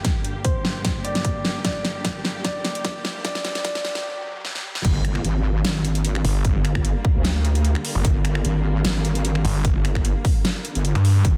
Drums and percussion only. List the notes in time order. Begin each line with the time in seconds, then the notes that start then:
0.05 kick, snare, closed hi-hat
0.25 closed hi-hat
0.45 kick, closed hi-hat
0.65 snare
0.85 kick, snare, closed hi-hat
1.05 closed hi-hat
1.15 snare, closed hi-hat
1.25 kick, closed hi-hat
1.45 snare
1.65 kick, snare, closed hi-hat
1.85 snare, closed hi-hat
2.05 kick, snare, closed hi-hat
2.25 snare
2.45 kick, snare, closed hi-hat
2.65 snare, closed hi-hat
2.75 closed hi-hat
2.85 kick, snare, closed hi-hat
3.05 snare
3.25 kick, snare, closed hi-hat
3.35 snare
3.45 snare, closed hi-hat
3.55 snare, closed hi-hat
3.65 kick, snare, closed hi-hat
3.75 snare
3.85 snare
3.95 snare
4.45 snare
4.55 snare
4.75 snare
4.85 kick, closed hi-hat, crash
5.05 finger snap, closed hi-hat
5.15 finger snap
5.25 closed hi-hat
5.65 snare, closed hi-hat
5.85 closed hi-hat
5.95 closed hi-hat
6.05 closed hi-hat
6.15 finger snap
6.25 open hi-hat
6.45 kick, closed hi-hat
6.65 finger snap, closed hi-hat
6.75 finger snap, kick
6.85 closed hi-hat
7.05 kick
7.25 snare, closed hi-hat
7.45 closed hi-hat
7.55 closed hi-hat
7.65 closed hi-hat
7.75 finger snap
7.85 open hi-hat
8.05 kick, closed hi-hat
8.25 finger snap, closed hi-hat
8.35 finger snap
8.45 closed hi-hat
8.85 snare, closed hi-hat
9.05 closed hi-hat
9.15 closed hi-hat
9.25 closed hi-hat
9.35 finger snap
9.45 open hi-hat
9.65 kick, closed hi-hat
9.85 finger snap, closed hi-hat
9.95 finger snap, kick
10.05 closed hi-hat
10.25 kick, open hi-hat
10.45 snare, closed hi-hat
10.65 closed hi-hat
10.75 closed hi-hat
10.85 closed hi-hat
10.95 finger snap, closed hi-hat
11.05 open hi-hat
11.25 kick, closed hi-hat